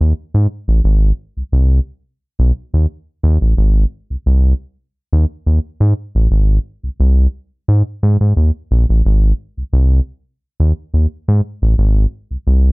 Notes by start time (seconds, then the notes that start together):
0.01 D#2
0.34 G#2
0.68 A1
0.84 G#1
1.37 C2
1.52 C2
2.39 B1
2.74 D#2
3.23 D#2
3.41 A1
3.57 G#1
4.10 C2
4.26 C2
5.13 D#2
5.46 D#2
5.80 G#2
6.15 A1
6.31 G#1
6.83 C2
7.00 C2
7.68 G#2
8.03 G#2
8.21 G#2
8.37 D#2
8.71 A#1
8.89 A1
9.05 G#1
9.57 C2
9.73 C2
10.60 D#2
10.94 D#2
11.28 G#2
11.62 A1
11.78 G#1
12.31 C2
12.47 C2